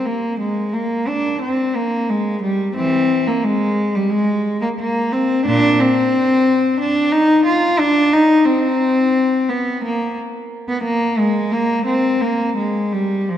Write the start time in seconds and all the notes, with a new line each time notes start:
0.06 A#3
0.40 G#3
0.73 A#3
1.08 D4
1.41 C4
1.75 A#3
2.10 G#3
2.42 G3
2.76 E3 C4
3.27 A#3
3.44 G#3
3.95 G3
4.10 G#3
4.62 A#3
4.79 A#3
5.12 C4
5.46 A#2 D4
5.80 C4
6.80 D4
7.12 D#4
7.46 F4
7.79 D4
8.13 D#4
8.45 C4
9.49 B3
9.84 A#3
10.69 B3
10.84 A#3
11.18 G#3
11.52 A#3
11.86 C4
12.21 A#3
12.57 G#3
12.92 G3
13.29 F3